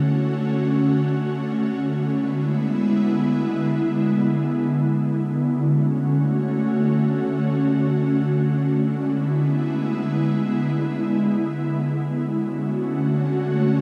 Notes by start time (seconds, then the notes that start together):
Already playing: D3 A3 C#4 F#4
1.78 D3 G#3 B3 E4
5.23 A3 C#4 F#4
8.68 G#3 B3 E4
12.13 D3 A3 C#4 F#4